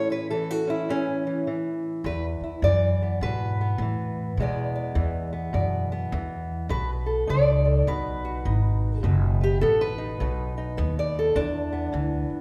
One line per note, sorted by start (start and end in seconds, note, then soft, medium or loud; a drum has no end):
0.00 2.02 A2 medium
0.00 0.31 E3 medium
0.00 0.66 C#4 medium
0.00 0.11 C#5 loud
0.10 0.50 E4 soft
0.10 0.30 B4 loud
0.30 0.89 E3 medium
0.30 0.50 A4 medium
0.50 0.70 F#4 medium
0.67 0.89 C#4 soft
0.67 0.89 E4 loud
0.89 1.27 E3 medium
0.89 1.48 C#4 loud
1.27 1.47 E3 medium
1.47 2.66 E3 medium
2.04 2.38 E2 medium
2.04 4.38 E2 medium
2.04 2.25 B4 loud
2.41 2.63 E4 medium
2.41 muted upright bass stroke soft
2.62 3.19 F#2 medium
2.62 3.22 D5 loud
2.67 3.81 E3 medium
3.02 3.60 B3 soft
3.21 3.78 G#2 medium
3.21 3.80 B2 medium
3.21 4.38 B4 loud
3.61 4.41 B3 medium
3.78 4.35 A2 medium
3.78 4.94 E3 medium
4.37 6.71 E2 medium
4.37 4.94 B2 medium
4.37 6.72 G#3 medium
4.37 5.32 B3 medium
4.42 4.74 D5 medium
4.75 5.53 D5 medium
4.95 5.52 E2 loud
4.95 6.12 E3 medium
5.33 5.91 B3 medium
5.53 6.10 F#2 medium
5.53 6.12 B2 medium
5.53 6.68 D5 medium
5.92 6.70 B3 medium
6.12 6.69 E2 loud
6.12 6.71 E3 medium
6.69 7.26 B1 medium
6.69 7.87 B2 medium
6.69 6.90 B4 loud
7.06 7.65 A4 soft
7.27 7.86 C#2 medium
7.27 8.44 D#4 medium
7.27 7.88 D5 loud
7.65 7.88 A4 soft
7.87 8.44 B1 medium
7.87 9.02 B2 medium
7.87 9.03 B4 loud
8.25 9.02 F#4 medium
8.45 9.02 G#1 medium
8.45 9.01 D#4 medium
9.03 9.60 F#1 loud
9.03 10.20 B2 medium
9.03 9.97 D#4 medium
9.03 9.40 B4 medium
9.41 9.61 G4 loud
9.41 9.80 B4 soft
9.61 10.19 A1 medium
9.61 10.76 B3 medium
9.61 9.81 A4 loud
9.81 10.98 B4 loud
9.98 10.20 D#4 soft
10.20 10.77 B1 medium
10.20 11.37 B2 medium
10.20 10.56 D#4 medium
10.58 11.35 D#4 medium
10.77 11.35 D#2 loud
10.77 11.34 B3 medium
10.99 11.18 D5 loud
11.19 11.38 A4 medium
11.35 11.93 E2 medium
11.35 12.41 E2 medium
11.35 12.41 D4 loud
11.72 12.41 B3 medium
11.92 12.28 D2 medium
11.92 12.41 E3 medium
12.30 muted upright bass stroke soft